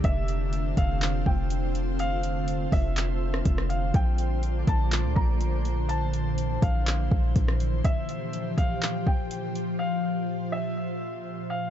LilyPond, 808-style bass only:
\new Staff \with { instrumentName = "808-style bass" } { \clef bass \time 4/4 \key g \dorian \tempo 4 = 123 f,,4. f,,4 f,,4.~ | f,,4. f,,4. f,,4 | bes,,4. bes,,8. d,16 bes,,4.~ | bes,,4. bes,,4 bes,,8 bes,,4 |
r1 | r1 | }